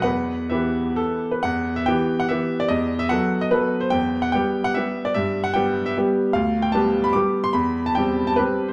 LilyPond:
<<
  \new Staff \with { instrumentName = "Grand piano" } { \time 3/4 \key e \minor \tempo 4 = 146 << { fis''4 e''4 a'8. b'16 | fis''8. e''16 g''8. fis''16 e''8. d''16 | dis''8. e''16 fis''8. dis''16 b'8. c''16 | g''8. fis''16 g''8. fis''16 e''8. d''16 |
e''8. fis''16 g''8. e''16 r4 | \key c \major f''8. g''16 a''8. b''16 d'''8. c'''16 | b''8. a''16 g''8. a''16 b'8. c''16 | } \\ { b'4 b'4. r8 | r2. | r2. | r2. |
r2. | r2. | r2. | } >> }
  \new Staff \with { instrumentName = "Grand piano" } { \time 3/4 \key e \minor e,4 <e b g'>2 | e,4 <e b g'>4 <e b g'>4 | e,4 <fis b a'>4 <fis b a'>4 | e,4 <g b g'>4 <g b g'>4 |
g,4 <g b g'>4 <g b g'>4 | \key c \major d,4 <g b g'>4 <g b g'>4 | e,4 <g c' g'>4 <g c' g'>4 | }
>>